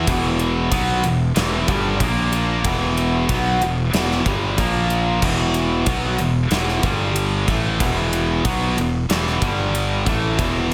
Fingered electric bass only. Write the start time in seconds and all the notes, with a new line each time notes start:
0.07 E1
0.71 B1
1.03 E1
1.37 E1
1.68 G1
2.00 A#1
2.64 E1
3.29 B1
3.61 E1
3.94 E1
4.26 G1
4.58 A#1
5.22 E1
5.86 B1
6.19 E1
6.51 E1
6.83 G1
7.48 A1
7.80 E1
8.45 B1
8.77 E1
9.09 E1
9.42 G1
10.06 A1
10.38 E1